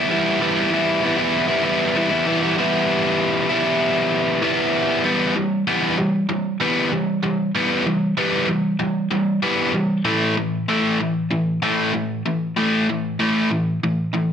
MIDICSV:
0, 0, Header, 1, 2, 480
1, 0, Start_track
1, 0, Key_signature, 1, "minor"
1, 0, Tempo, 617920
1, 77, Time_signature, 4, 2, 24, 8
1, 3918, Tempo, 626959
1, 11027, End_track
2, 0, Start_track
2, 0, Title_t, "Overdriven electric guitar"
2, 0, Program_c, 0, 29
2, 65, Note_on_c, 0, 52, 102
2, 76, Note_on_c, 0, 55, 104
2, 79, Note_on_c, 0, 59, 97
2, 84, Note_on_c, 0, 64, 111
2, 303, Note_off_c, 0, 52, 0
2, 311, Note_off_c, 0, 55, 0
2, 313, Note_on_c, 0, 52, 86
2, 317, Note_off_c, 0, 59, 0
2, 320, Note_on_c, 0, 55, 93
2, 322, Note_off_c, 0, 64, 0
2, 327, Note_on_c, 0, 59, 93
2, 331, Note_on_c, 0, 64, 91
2, 418, Note_off_c, 0, 64, 0
2, 428, Note_on_c, 0, 64, 81
2, 429, Note_off_c, 0, 59, 0
2, 436, Note_off_c, 0, 55, 0
2, 438, Note_on_c, 0, 59, 63
2, 445, Note_on_c, 0, 55, 65
2, 543, Note_off_c, 0, 52, 0
2, 553, Note_on_c, 0, 52, 85
2, 554, Note_off_c, 0, 55, 0
2, 560, Note_off_c, 0, 59, 0
2, 563, Note_on_c, 0, 55, 83
2, 564, Note_off_c, 0, 64, 0
2, 569, Note_on_c, 0, 59, 83
2, 573, Note_on_c, 0, 64, 99
2, 782, Note_off_c, 0, 52, 0
2, 791, Note_off_c, 0, 55, 0
2, 792, Note_on_c, 0, 52, 67
2, 797, Note_off_c, 0, 59, 0
2, 800, Note_on_c, 0, 55, 82
2, 803, Note_off_c, 0, 64, 0
2, 807, Note_on_c, 0, 59, 78
2, 813, Note_on_c, 0, 64, 83
2, 899, Note_off_c, 0, 64, 0
2, 908, Note_on_c, 0, 64, 70
2, 914, Note_off_c, 0, 59, 0
2, 922, Note_off_c, 0, 55, 0
2, 923, Note_on_c, 0, 59, 68
2, 931, Note_on_c, 0, 55, 50
2, 1141, Note_off_c, 0, 64, 0
2, 1150, Note_off_c, 0, 52, 0
2, 1151, Note_off_c, 0, 59, 0
2, 1151, Note_on_c, 0, 64, 90
2, 1158, Note_off_c, 0, 55, 0
2, 1160, Note_on_c, 0, 59, 67
2, 1168, Note_on_c, 0, 55, 62
2, 1265, Note_off_c, 0, 55, 0
2, 1268, Note_on_c, 0, 52, 78
2, 1271, Note_off_c, 0, 59, 0
2, 1275, Note_on_c, 0, 55, 79
2, 1277, Note_off_c, 0, 64, 0
2, 1280, Note_on_c, 0, 59, 103
2, 1286, Note_on_c, 0, 64, 86
2, 1507, Note_off_c, 0, 52, 0
2, 1511, Note_off_c, 0, 55, 0
2, 1516, Note_on_c, 0, 52, 91
2, 1518, Note_off_c, 0, 59, 0
2, 1521, Note_on_c, 0, 55, 106
2, 1523, Note_off_c, 0, 64, 0
2, 1528, Note_on_c, 0, 59, 111
2, 1532, Note_on_c, 0, 64, 111
2, 1618, Note_off_c, 0, 64, 0
2, 1627, Note_on_c, 0, 64, 78
2, 1631, Note_off_c, 0, 59, 0
2, 1637, Note_off_c, 0, 55, 0
2, 1640, Note_on_c, 0, 59, 70
2, 1647, Note_on_c, 0, 55, 64
2, 1742, Note_off_c, 0, 52, 0
2, 1751, Note_on_c, 0, 52, 92
2, 1753, Note_off_c, 0, 55, 0
2, 1755, Note_off_c, 0, 59, 0
2, 1761, Note_off_c, 0, 64, 0
2, 1762, Note_on_c, 0, 55, 79
2, 1765, Note_on_c, 0, 59, 84
2, 1770, Note_on_c, 0, 64, 80
2, 1867, Note_off_c, 0, 64, 0
2, 1876, Note_on_c, 0, 64, 82
2, 1878, Note_off_c, 0, 59, 0
2, 1887, Note_on_c, 0, 59, 70
2, 1888, Note_off_c, 0, 55, 0
2, 1897, Note_on_c, 0, 55, 62
2, 1975, Note_off_c, 0, 52, 0
2, 1978, Note_off_c, 0, 64, 0
2, 1983, Note_off_c, 0, 59, 0
2, 1988, Note_off_c, 0, 55, 0
2, 2001, Note_on_c, 0, 52, 99
2, 2007, Note_on_c, 0, 55, 101
2, 2012, Note_on_c, 0, 59, 85
2, 2017, Note_on_c, 0, 64, 93
2, 2701, Note_off_c, 0, 52, 0
2, 2704, Note_off_c, 0, 55, 0
2, 2704, Note_off_c, 0, 64, 0
2, 2706, Note_off_c, 0, 59, 0
2, 2713, Note_on_c, 0, 64, 86
2, 2721, Note_on_c, 0, 59, 66
2, 2728, Note_on_c, 0, 55, 68
2, 2732, Note_on_c, 0, 52, 53
2, 3420, Note_off_c, 0, 64, 0
2, 3424, Note_off_c, 0, 52, 0
2, 3424, Note_off_c, 0, 59, 0
2, 3428, Note_off_c, 0, 55, 0
2, 3433, Note_on_c, 0, 52, 66
2, 3443, Note_on_c, 0, 55, 78
2, 3445, Note_on_c, 0, 59, 76
2, 3454, Note_on_c, 0, 64, 85
2, 3902, Note_off_c, 0, 52, 0
2, 3907, Note_off_c, 0, 55, 0
2, 3908, Note_off_c, 0, 59, 0
2, 3912, Note_off_c, 0, 64, 0
2, 3913, Note_on_c, 0, 52, 70
2, 3918, Note_on_c, 0, 55, 74
2, 3920, Note_on_c, 0, 59, 87
2, 4139, Note_off_c, 0, 52, 0
2, 4141, Note_off_c, 0, 55, 0
2, 4142, Note_off_c, 0, 59, 0
2, 4155, Note_on_c, 0, 52, 53
2, 4160, Note_on_c, 0, 55, 62
2, 4370, Note_off_c, 0, 52, 0
2, 4372, Note_off_c, 0, 55, 0
2, 4398, Note_on_c, 0, 52, 72
2, 4398, Note_on_c, 0, 55, 76
2, 4403, Note_on_c, 0, 59, 80
2, 4620, Note_off_c, 0, 52, 0
2, 4620, Note_off_c, 0, 55, 0
2, 4623, Note_off_c, 0, 59, 0
2, 4634, Note_on_c, 0, 52, 53
2, 4637, Note_on_c, 0, 55, 57
2, 4849, Note_off_c, 0, 52, 0
2, 4850, Note_off_c, 0, 55, 0
2, 4873, Note_on_c, 0, 52, 60
2, 4875, Note_on_c, 0, 55, 64
2, 5088, Note_off_c, 0, 52, 0
2, 5089, Note_off_c, 0, 55, 0
2, 5115, Note_on_c, 0, 52, 80
2, 5119, Note_on_c, 0, 55, 77
2, 5122, Note_on_c, 0, 59, 90
2, 5338, Note_off_c, 0, 52, 0
2, 5340, Note_off_c, 0, 55, 0
2, 5342, Note_off_c, 0, 59, 0
2, 5357, Note_on_c, 0, 52, 63
2, 5357, Note_on_c, 0, 55, 71
2, 5570, Note_off_c, 0, 52, 0
2, 5570, Note_off_c, 0, 55, 0
2, 5594, Note_on_c, 0, 52, 62
2, 5596, Note_on_c, 0, 55, 66
2, 5808, Note_off_c, 0, 52, 0
2, 5809, Note_off_c, 0, 55, 0
2, 5841, Note_on_c, 0, 52, 70
2, 5841, Note_on_c, 0, 55, 83
2, 5846, Note_on_c, 0, 59, 95
2, 6061, Note_off_c, 0, 52, 0
2, 6061, Note_off_c, 0, 55, 0
2, 6064, Note_off_c, 0, 59, 0
2, 6078, Note_on_c, 0, 52, 63
2, 6080, Note_on_c, 0, 55, 63
2, 6290, Note_off_c, 0, 52, 0
2, 6291, Note_off_c, 0, 55, 0
2, 6312, Note_on_c, 0, 52, 59
2, 6317, Note_on_c, 0, 55, 66
2, 6321, Note_on_c, 0, 59, 76
2, 6537, Note_off_c, 0, 52, 0
2, 6539, Note_off_c, 0, 55, 0
2, 6541, Note_off_c, 0, 59, 0
2, 6550, Note_on_c, 0, 52, 57
2, 6552, Note_on_c, 0, 55, 62
2, 6766, Note_off_c, 0, 52, 0
2, 6767, Note_off_c, 0, 55, 0
2, 6787, Note_on_c, 0, 52, 62
2, 6790, Note_on_c, 0, 55, 64
2, 7005, Note_off_c, 0, 52, 0
2, 7006, Note_off_c, 0, 55, 0
2, 7028, Note_on_c, 0, 52, 67
2, 7031, Note_on_c, 0, 55, 80
2, 7245, Note_off_c, 0, 52, 0
2, 7247, Note_off_c, 0, 55, 0
2, 7270, Note_on_c, 0, 52, 84
2, 7274, Note_on_c, 0, 55, 84
2, 7276, Note_on_c, 0, 59, 94
2, 7496, Note_off_c, 0, 52, 0
2, 7498, Note_off_c, 0, 55, 0
2, 7499, Note_off_c, 0, 59, 0
2, 7510, Note_on_c, 0, 52, 57
2, 7515, Note_on_c, 0, 55, 59
2, 7727, Note_off_c, 0, 52, 0
2, 7729, Note_off_c, 0, 55, 0
2, 7747, Note_on_c, 0, 45, 75
2, 7750, Note_on_c, 0, 52, 81
2, 7752, Note_on_c, 0, 57, 93
2, 7975, Note_off_c, 0, 45, 0
2, 7977, Note_off_c, 0, 52, 0
2, 7978, Note_off_c, 0, 57, 0
2, 7997, Note_on_c, 0, 45, 65
2, 7999, Note_on_c, 0, 52, 69
2, 8211, Note_off_c, 0, 45, 0
2, 8212, Note_off_c, 0, 52, 0
2, 8234, Note_on_c, 0, 45, 78
2, 8239, Note_on_c, 0, 52, 77
2, 8242, Note_on_c, 0, 57, 75
2, 8459, Note_off_c, 0, 45, 0
2, 8462, Note_off_c, 0, 52, 0
2, 8463, Note_off_c, 0, 57, 0
2, 8475, Note_on_c, 0, 45, 52
2, 8480, Note_on_c, 0, 52, 61
2, 8690, Note_off_c, 0, 45, 0
2, 8693, Note_off_c, 0, 52, 0
2, 8711, Note_on_c, 0, 45, 55
2, 8716, Note_on_c, 0, 52, 63
2, 8929, Note_off_c, 0, 45, 0
2, 8931, Note_off_c, 0, 52, 0
2, 8953, Note_on_c, 0, 45, 83
2, 8958, Note_on_c, 0, 52, 83
2, 8961, Note_on_c, 0, 57, 93
2, 9180, Note_off_c, 0, 45, 0
2, 9182, Note_off_c, 0, 52, 0
2, 9184, Note_off_c, 0, 57, 0
2, 9191, Note_on_c, 0, 45, 68
2, 9197, Note_on_c, 0, 52, 65
2, 9409, Note_off_c, 0, 45, 0
2, 9412, Note_off_c, 0, 52, 0
2, 9439, Note_on_c, 0, 52, 69
2, 9440, Note_on_c, 0, 45, 59
2, 9654, Note_off_c, 0, 45, 0
2, 9654, Note_off_c, 0, 52, 0
2, 9674, Note_on_c, 0, 45, 77
2, 9678, Note_on_c, 0, 52, 73
2, 9685, Note_on_c, 0, 57, 85
2, 9901, Note_off_c, 0, 45, 0
2, 9903, Note_off_c, 0, 52, 0
2, 9906, Note_off_c, 0, 57, 0
2, 9925, Note_on_c, 0, 45, 59
2, 9928, Note_on_c, 0, 52, 68
2, 10137, Note_off_c, 0, 45, 0
2, 10138, Note_off_c, 0, 52, 0
2, 10157, Note_on_c, 0, 45, 68
2, 10161, Note_on_c, 0, 52, 74
2, 10164, Note_on_c, 0, 57, 82
2, 10382, Note_off_c, 0, 45, 0
2, 10385, Note_off_c, 0, 52, 0
2, 10386, Note_off_c, 0, 57, 0
2, 10395, Note_on_c, 0, 45, 54
2, 10400, Note_on_c, 0, 52, 59
2, 10612, Note_off_c, 0, 45, 0
2, 10614, Note_off_c, 0, 52, 0
2, 10648, Note_on_c, 0, 45, 51
2, 10649, Note_on_c, 0, 52, 61
2, 10858, Note_off_c, 0, 45, 0
2, 10858, Note_off_c, 0, 52, 0
2, 10879, Note_on_c, 0, 45, 58
2, 10885, Note_on_c, 0, 52, 72
2, 11027, Note_off_c, 0, 45, 0
2, 11027, Note_off_c, 0, 52, 0
2, 11027, End_track
0, 0, End_of_file